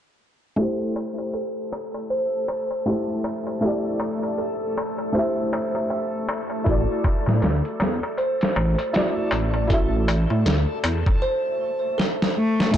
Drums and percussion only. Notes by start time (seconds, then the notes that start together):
0.58 darbuka tek
0.96 darbuka tek
1.18 darbuka tek
1.33 darbuka tek
1.73 darbuka tek
1.94 darbuka tek
2.10 darbuka tek
2.48 darbuka tek
2.71 darbuka tek
2.86 darbuka tek
3.24 darbuka tek
3.47 darbuka tek
3.62 darbuka tek
4.00 darbuka tek
4.23 darbuka tek
4.38 darbuka tek
4.78 darbuka tek
4.98 darbuka tek
5.14 darbuka tek
5.53 darbuka tek
5.75 darbuka tek
5.90 darbuka tek
6.29 darbuka tek
6.50 darbuka tek
6.65 kick, closed hi-hat, darbuka tek
7.04 kick, closed hi-hat, darbuka tek
7.26 snare, darbuka tek
7.42 snare, closed hi-hat, darbuka tek
7.65 closed hi-hat
7.80 snare, closed hi-hat, darbuka tek
8.03 darbuka tek
8.17 closed hi-hat, darbuka tek
8.41 snare, closed hi-hat
8.56 darbuka tek
8.78 closed hi-hat, darbuka tek
8.94 snare, closed hi-hat, darbuka tek
9.31 closed hi-hat, darbuka tek
9.54 darbuka tek
9.70 kick, closed hi-hat, darbuka tek
10.08 closed hi-hat, darbuka tek
10.30 darbuka tek
10.46 snare, closed hi-hat, darbuka tek
10.84 closed hi-hat, darbuka tek
11.06 kick, darbuka tek
11.99 snare
12.22 snare
12.60 snare
12.73 kick, closed hi-hat, darbuka tek